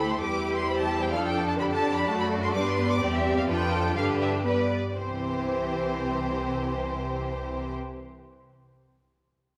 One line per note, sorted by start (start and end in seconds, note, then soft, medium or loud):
0.00 0.20 D2 soft
0.00 0.20 A3 soft
0.00 0.19 E4 soft
0.00 0.19 G4 soft
0.00 0.21 A4 medium
0.00 0.20 C5 soft
0.10 0.21 C6 medium
0.19 1.12 E2 soft
0.19 1.11 G3 soft
0.19 1.12 E4 medium
0.19 0.65 G4 soft
0.19 1.14 G4 medium
0.19 0.67 B4 soft
0.19 0.54 D6 medium
0.56 0.67 C6 medium
0.66 1.12 G4 soft
0.66 1.12 C5 soft
0.66 0.79 B5 medium
0.79 1.02 A5 medium
1.02 1.14 G5 medium
1.12 2.07 F2 medium
1.12 1.61 F3 medium
1.12 2.55 D4 medium
1.12 1.59 A4 soft
1.12 1.59 A4 medium
1.12 1.58 D5 soft
1.12 1.24 F5 medium
1.25 1.48 G5 medium
1.48 1.53 A5 medium
1.59 2.07 D3 medium
1.59 2.06 G4 medium
1.59 2.06 A4 medium
1.59 3.44 D5 medium
1.59 1.64 B5 medium
1.72 1.95 A5 medium
1.96 2.07 B5 medium
2.06 2.54 F#2 medium
2.06 2.53 A3 medium
2.06 2.54 F#4 medium
2.06 2.53 A4 medium
2.06 2.19 A5 medium
2.20 2.28 B5 medium
2.43 2.48 C6 medium
2.53 3.01 G2 medium
2.53 3.00 G3 medium
2.53 3.01 B3 medium
2.53 3.01 D4 medium
2.53 3.00 B4 medium
2.53 2.65 D6 medium
2.67 2.90 C6 medium
2.90 3.01 D6 medium
3.01 3.47 E2 medium
3.01 3.47 G3 medium
3.01 3.47 C4 medium
3.01 3.48 G4 medium
3.01 3.13 D5 medium
3.14 3.37 E5 medium
3.38 3.42 F5 medium
3.48 3.95 F2 medium
3.48 3.95 F3 medium
3.48 3.95 D4 medium
3.48 3.95 F4 medium
3.48 3.71 A4 medium
3.48 3.72 B4 medium
3.48 3.96 G5 medium
3.72 3.96 A4 medium
3.96 4.75 G2 medium
3.96 4.46 D3 medium
3.96 4.45 D4 medium
3.96 4.44 G4 medium
3.96 4.44 B4 soft
3.96 4.05 F5 medium
4.22 4.30 E5 medium
4.45 4.74 G3 soft
4.45 4.75 B3 medium
4.45 4.74 B4 soft
4.45 4.71 B4 medium
4.45 4.96 D5 medium
4.96 7.73 C2 soft
4.96 7.73 C3 soft
4.96 7.72 E3 soft
4.96 7.72 C4 soft
4.96 7.73 G4 soft
4.96 7.72 C5 soft
4.96 7.73 C5 medium